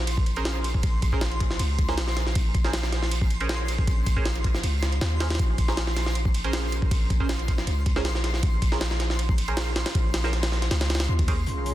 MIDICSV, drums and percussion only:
0, 0, Header, 1, 2, 480
1, 0, Start_track
1, 0, Key_signature, -5, "minor"
1, 0, Tempo, 379747
1, 1058, Time_signature, 4, 2, 24, 8
1, 14841, End_track
2, 0, Start_track
2, 0, Title_t, "Drums"
2, 92, Note_on_c, 9, 51, 84
2, 218, Note_off_c, 9, 51, 0
2, 221, Note_on_c, 9, 36, 91
2, 333, Note_on_c, 9, 51, 65
2, 347, Note_off_c, 9, 36, 0
2, 459, Note_off_c, 9, 51, 0
2, 459, Note_on_c, 9, 51, 42
2, 572, Note_off_c, 9, 51, 0
2, 572, Note_on_c, 9, 38, 109
2, 572, Note_on_c, 9, 51, 81
2, 698, Note_off_c, 9, 38, 0
2, 698, Note_off_c, 9, 51, 0
2, 813, Note_on_c, 9, 51, 64
2, 939, Note_off_c, 9, 51, 0
2, 941, Note_on_c, 9, 36, 86
2, 1051, Note_on_c, 9, 51, 86
2, 1055, Note_off_c, 9, 36, 0
2, 1055, Note_on_c, 9, 36, 104
2, 1177, Note_off_c, 9, 51, 0
2, 1181, Note_off_c, 9, 36, 0
2, 1292, Note_on_c, 9, 51, 64
2, 1295, Note_on_c, 9, 36, 91
2, 1419, Note_off_c, 9, 51, 0
2, 1421, Note_off_c, 9, 36, 0
2, 1422, Note_on_c, 9, 36, 89
2, 1533, Note_on_c, 9, 38, 115
2, 1533, Note_on_c, 9, 51, 86
2, 1548, Note_off_c, 9, 36, 0
2, 1660, Note_off_c, 9, 38, 0
2, 1660, Note_off_c, 9, 51, 0
2, 1662, Note_on_c, 9, 51, 41
2, 1775, Note_off_c, 9, 51, 0
2, 1775, Note_on_c, 9, 51, 62
2, 1776, Note_on_c, 9, 36, 87
2, 1901, Note_off_c, 9, 51, 0
2, 1902, Note_off_c, 9, 36, 0
2, 1903, Note_on_c, 9, 38, 41
2, 2015, Note_on_c, 9, 51, 84
2, 2029, Note_off_c, 9, 38, 0
2, 2141, Note_off_c, 9, 51, 0
2, 2257, Note_on_c, 9, 36, 81
2, 2257, Note_on_c, 9, 51, 60
2, 2383, Note_off_c, 9, 36, 0
2, 2383, Note_off_c, 9, 51, 0
2, 2384, Note_on_c, 9, 38, 47
2, 2497, Note_off_c, 9, 38, 0
2, 2497, Note_on_c, 9, 38, 101
2, 2497, Note_on_c, 9, 51, 76
2, 2623, Note_off_c, 9, 38, 0
2, 2623, Note_off_c, 9, 51, 0
2, 2623, Note_on_c, 9, 38, 41
2, 2738, Note_off_c, 9, 38, 0
2, 2738, Note_on_c, 9, 38, 34
2, 2738, Note_on_c, 9, 51, 58
2, 2864, Note_off_c, 9, 38, 0
2, 2864, Note_off_c, 9, 51, 0
2, 2864, Note_on_c, 9, 38, 35
2, 2975, Note_on_c, 9, 51, 85
2, 2977, Note_on_c, 9, 36, 103
2, 2990, Note_off_c, 9, 38, 0
2, 3101, Note_off_c, 9, 51, 0
2, 3104, Note_off_c, 9, 36, 0
2, 3217, Note_on_c, 9, 51, 67
2, 3218, Note_on_c, 9, 36, 93
2, 3343, Note_on_c, 9, 38, 54
2, 3344, Note_off_c, 9, 36, 0
2, 3344, Note_off_c, 9, 51, 0
2, 3457, Note_off_c, 9, 38, 0
2, 3457, Note_on_c, 9, 38, 113
2, 3457, Note_on_c, 9, 51, 86
2, 3582, Note_off_c, 9, 38, 0
2, 3582, Note_on_c, 9, 38, 46
2, 3583, Note_off_c, 9, 51, 0
2, 3697, Note_off_c, 9, 38, 0
2, 3697, Note_on_c, 9, 38, 37
2, 3697, Note_on_c, 9, 51, 64
2, 3823, Note_off_c, 9, 38, 0
2, 3823, Note_off_c, 9, 51, 0
2, 3824, Note_on_c, 9, 38, 41
2, 3937, Note_on_c, 9, 51, 84
2, 3950, Note_off_c, 9, 38, 0
2, 4063, Note_off_c, 9, 51, 0
2, 4064, Note_on_c, 9, 36, 92
2, 4177, Note_on_c, 9, 51, 68
2, 4190, Note_off_c, 9, 36, 0
2, 4303, Note_off_c, 9, 51, 0
2, 4303, Note_on_c, 9, 51, 41
2, 4416, Note_off_c, 9, 51, 0
2, 4416, Note_on_c, 9, 38, 111
2, 4416, Note_on_c, 9, 51, 83
2, 4542, Note_off_c, 9, 38, 0
2, 4542, Note_off_c, 9, 51, 0
2, 4656, Note_on_c, 9, 51, 66
2, 4783, Note_off_c, 9, 51, 0
2, 4784, Note_on_c, 9, 36, 90
2, 4897, Note_on_c, 9, 51, 87
2, 4898, Note_off_c, 9, 36, 0
2, 4898, Note_on_c, 9, 36, 105
2, 5024, Note_off_c, 9, 36, 0
2, 5024, Note_off_c, 9, 51, 0
2, 5138, Note_on_c, 9, 36, 88
2, 5138, Note_on_c, 9, 51, 68
2, 5264, Note_off_c, 9, 51, 0
2, 5265, Note_off_c, 9, 36, 0
2, 5265, Note_on_c, 9, 36, 90
2, 5378, Note_on_c, 9, 38, 115
2, 5378, Note_on_c, 9, 51, 88
2, 5391, Note_off_c, 9, 36, 0
2, 5504, Note_off_c, 9, 51, 0
2, 5504, Note_on_c, 9, 51, 43
2, 5505, Note_off_c, 9, 38, 0
2, 5617, Note_off_c, 9, 51, 0
2, 5617, Note_on_c, 9, 51, 61
2, 5618, Note_on_c, 9, 36, 89
2, 5743, Note_off_c, 9, 51, 0
2, 5744, Note_off_c, 9, 36, 0
2, 5744, Note_on_c, 9, 38, 41
2, 5859, Note_on_c, 9, 51, 85
2, 5871, Note_off_c, 9, 38, 0
2, 5985, Note_off_c, 9, 51, 0
2, 6099, Note_on_c, 9, 38, 45
2, 6099, Note_on_c, 9, 51, 69
2, 6224, Note_off_c, 9, 51, 0
2, 6224, Note_on_c, 9, 51, 43
2, 6226, Note_off_c, 9, 38, 0
2, 6337, Note_off_c, 9, 51, 0
2, 6337, Note_on_c, 9, 38, 114
2, 6337, Note_on_c, 9, 51, 82
2, 6464, Note_off_c, 9, 38, 0
2, 6464, Note_off_c, 9, 51, 0
2, 6578, Note_on_c, 9, 38, 99
2, 6578, Note_on_c, 9, 51, 75
2, 6704, Note_off_c, 9, 38, 0
2, 6704, Note_off_c, 9, 51, 0
2, 6705, Note_on_c, 9, 38, 80
2, 6705, Note_on_c, 9, 51, 62
2, 6761, Note_off_c, 9, 38, 0
2, 6761, Note_off_c, 9, 51, 0
2, 6761, Note_on_c, 9, 38, 85
2, 6761, Note_on_c, 9, 51, 61
2, 6818, Note_off_c, 9, 51, 0
2, 6818, Note_on_c, 9, 36, 106
2, 6818, Note_on_c, 9, 51, 89
2, 6888, Note_off_c, 9, 38, 0
2, 6944, Note_off_c, 9, 36, 0
2, 6945, Note_off_c, 9, 51, 0
2, 7056, Note_on_c, 9, 51, 66
2, 7057, Note_on_c, 9, 36, 93
2, 7182, Note_off_c, 9, 51, 0
2, 7184, Note_off_c, 9, 36, 0
2, 7184, Note_on_c, 9, 38, 56
2, 7296, Note_off_c, 9, 38, 0
2, 7296, Note_on_c, 9, 38, 114
2, 7296, Note_on_c, 9, 51, 88
2, 7423, Note_off_c, 9, 38, 0
2, 7423, Note_off_c, 9, 51, 0
2, 7424, Note_on_c, 9, 38, 43
2, 7540, Note_off_c, 9, 38, 0
2, 7540, Note_on_c, 9, 38, 37
2, 7540, Note_on_c, 9, 51, 66
2, 7665, Note_off_c, 9, 38, 0
2, 7665, Note_on_c, 9, 38, 41
2, 7666, Note_off_c, 9, 51, 0
2, 7778, Note_on_c, 9, 51, 83
2, 7791, Note_off_c, 9, 38, 0
2, 7904, Note_off_c, 9, 51, 0
2, 7904, Note_on_c, 9, 36, 97
2, 8019, Note_on_c, 9, 51, 66
2, 8031, Note_off_c, 9, 36, 0
2, 8145, Note_off_c, 9, 51, 0
2, 8146, Note_on_c, 9, 51, 42
2, 8258, Note_off_c, 9, 51, 0
2, 8258, Note_on_c, 9, 38, 111
2, 8258, Note_on_c, 9, 51, 87
2, 8384, Note_off_c, 9, 38, 0
2, 8384, Note_off_c, 9, 51, 0
2, 8498, Note_on_c, 9, 51, 66
2, 8624, Note_on_c, 9, 36, 90
2, 8625, Note_off_c, 9, 51, 0
2, 8737, Note_off_c, 9, 36, 0
2, 8737, Note_on_c, 9, 36, 109
2, 8738, Note_on_c, 9, 51, 88
2, 8864, Note_off_c, 9, 36, 0
2, 8864, Note_off_c, 9, 51, 0
2, 8977, Note_on_c, 9, 36, 90
2, 8978, Note_on_c, 9, 51, 66
2, 9104, Note_off_c, 9, 36, 0
2, 9104, Note_off_c, 9, 51, 0
2, 9104, Note_on_c, 9, 36, 93
2, 9218, Note_on_c, 9, 38, 117
2, 9218, Note_on_c, 9, 51, 89
2, 9230, Note_off_c, 9, 36, 0
2, 9344, Note_off_c, 9, 38, 0
2, 9344, Note_off_c, 9, 51, 0
2, 9344, Note_on_c, 9, 51, 43
2, 9457, Note_off_c, 9, 51, 0
2, 9457, Note_on_c, 9, 36, 91
2, 9457, Note_on_c, 9, 51, 62
2, 9583, Note_off_c, 9, 36, 0
2, 9584, Note_off_c, 9, 51, 0
2, 9584, Note_on_c, 9, 38, 43
2, 9696, Note_on_c, 9, 51, 86
2, 9711, Note_off_c, 9, 38, 0
2, 9823, Note_off_c, 9, 51, 0
2, 9935, Note_on_c, 9, 51, 61
2, 9936, Note_on_c, 9, 36, 85
2, 10061, Note_off_c, 9, 51, 0
2, 10063, Note_off_c, 9, 36, 0
2, 10063, Note_on_c, 9, 38, 48
2, 10174, Note_off_c, 9, 38, 0
2, 10174, Note_on_c, 9, 38, 103
2, 10174, Note_on_c, 9, 51, 75
2, 10300, Note_off_c, 9, 38, 0
2, 10300, Note_off_c, 9, 51, 0
2, 10303, Note_on_c, 9, 38, 41
2, 10414, Note_off_c, 9, 38, 0
2, 10414, Note_on_c, 9, 38, 34
2, 10414, Note_on_c, 9, 51, 61
2, 10541, Note_off_c, 9, 38, 0
2, 10541, Note_off_c, 9, 51, 0
2, 10541, Note_on_c, 9, 38, 36
2, 10654, Note_on_c, 9, 51, 86
2, 10655, Note_on_c, 9, 36, 107
2, 10667, Note_off_c, 9, 38, 0
2, 10780, Note_off_c, 9, 51, 0
2, 10782, Note_off_c, 9, 36, 0
2, 10896, Note_on_c, 9, 36, 89
2, 10896, Note_on_c, 9, 51, 65
2, 11022, Note_off_c, 9, 36, 0
2, 11022, Note_off_c, 9, 51, 0
2, 11022, Note_on_c, 9, 38, 57
2, 11136, Note_off_c, 9, 38, 0
2, 11136, Note_on_c, 9, 38, 116
2, 11136, Note_on_c, 9, 51, 87
2, 11262, Note_off_c, 9, 38, 0
2, 11262, Note_off_c, 9, 51, 0
2, 11262, Note_on_c, 9, 38, 46
2, 11374, Note_off_c, 9, 38, 0
2, 11374, Note_on_c, 9, 38, 38
2, 11374, Note_on_c, 9, 51, 63
2, 11501, Note_off_c, 9, 38, 0
2, 11501, Note_off_c, 9, 51, 0
2, 11503, Note_on_c, 9, 38, 42
2, 11617, Note_on_c, 9, 51, 86
2, 11629, Note_off_c, 9, 38, 0
2, 11742, Note_on_c, 9, 36, 98
2, 11743, Note_off_c, 9, 51, 0
2, 11857, Note_on_c, 9, 51, 68
2, 11869, Note_off_c, 9, 36, 0
2, 11983, Note_off_c, 9, 51, 0
2, 11983, Note_on_c, 9, 51, 43
2, 12096, Note_off_c, 9, 51, 0
2, 12096, Note_on_c, 9, 38, 113
2, 12096, Note_on_c, 9, 51, 88
2, 12222, Note_off_c, 9, 38, 0
2, 12222, Note_off_c, 9, 51, 0
2, 12335, Note_on_c, 9, 38, 102
2, 12335, Note_on_c, 9, 51, 75
2, 12462, Note_off_c, 9, 38, 0
2, 12462, Note_off_c, 9, 51, 0
2, 12462, Note_on_c, 9, 38, 97
2, 12462, Note_on_c, 9, 51, 75
2, 12576, Note_off_c, 9, 51, 0
2, 12576, Note_on_c, 9, 36, 109
2, 12576, Note_on_c, 9, 51, 88
2, 12589, Note_off_c, 9, 38, 0
2, 12703, Note_off_c, 9, 36, 0
2, 12703, Note_off_c, 9, 51, 0
2, 12816, Note_on_c, 9, 38, 104
2, 12816, Note_on_c, 9, 51, 79
2, 12942, Note_off_c, 9, 38, 0
2, 12942, Note_off_c, 9, 51, 0
2, 12943, Note_on_c, 9, 38, 42
2, 13057, Note_off_c, 9, 38, 0
2, 13057, Note_on_c, 9, 38, 35
2, 13057, Note_on_c, 9, 51, 62
2, 13183, Note_off_c, 9, 38, 0
2, 13183, Note_off_c, 9, 51, 0
2, 13184, Note_on_c, 9, 38, 101
2, 13184, Note_on_c, 9, 51, 78
2, 13299, Note_off_c, 9, 38, 0
2, 13299, Note_on_c, 9, 38, 41
2, 13310, Note_off_c, 9, 51, 0
2, 13425, Note_off_c, 9, 38, 0
2, 13426, Note_on_c, 9, 38, 35
2, 13426, Note_on_c, 9, 51, 62
2, 13538, Note_off_c, 9, 38, 0
2, 13538, Note_off_c, 9, 51, 0
2, 13538, Note_on_c, 9, 38, 100
2, 13538, Note_on_c, 9, 51, 76
2, 13664, Note_off_c, 9, 38, 0
2, 13664, Note_off_c, 9, 51, 0
2, 13664, Note_on_c, 9, 38, 103
2, 13664, Note_on_c, 9, 51, 79
2, 13777, Note_off_c, 9, 38, 0
2, 13777, Note_off_c, 9, 51, 0
2, 13777, Note_on_c, 9, 38, 92
2, 13777, Note_on_c, 9, 51, 69
2, 13840, Note_off_c, 9, 38, 0
2, 13840, Note_off_c, 9, 51, 0
2, 13840, Note_on_c, 9, 38, 89
2, 13840, Note_on_c, 9, 51, 66
2, 13903, Note_off_c, 9, 38, 0
2, 13903, Note_off_c, 9, 51, 0
2, 13903, Note_on_c, 9, 38, 103
2, 13903, Note_on_c, 9, 51, 79
2, 14030, Note_off_c, 9, 38, 0
2, 14030, Note_off_c, 9, 51, 0
2, 14143, Note_on_c, 9, 51, 61
2, 14144, Note_on_c, 9, 36, 82
2, 14258, Note_off_c, 9, 36, 0
2, 14258, Note_off_c, 9, 51, 0
2, 14258, Note_on_c, 9, 36, 99
2, 14258, Note_on_c, 9, 51, 79
2, 14384, Note_off_c, 9, 36, 0
2, 14384, Note_off_c, 9, 51, 0
2, 14490, Note_on_c, 9, 42, 70
2, 14617, Note_off_c, 9, 42, 0
2, 14737, Note_on_c, 9, 42, 64
2, 14841, Note_off_c, 9, 42, 0
2, 14841, End_track
0, 0, End_of_file